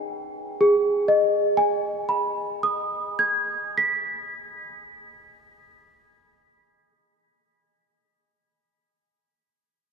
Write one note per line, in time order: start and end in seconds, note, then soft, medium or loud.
0.00 0.54 G#4 medium
0.00 0.55 B4 soft
0.00 0.55 D#5 soft
0.00 0.64 G5 loud
0.00 0.63 G#5 medium
0.61 4.33 G#4 medium
1.08 4.80 D#5 medium
1.57 5.29 G#5 medium
2.09 5.81 B5 medium
2.63 6.35 D#6 medium
3.19 6.91 G#6 medium
3.78 7.49 B6 medium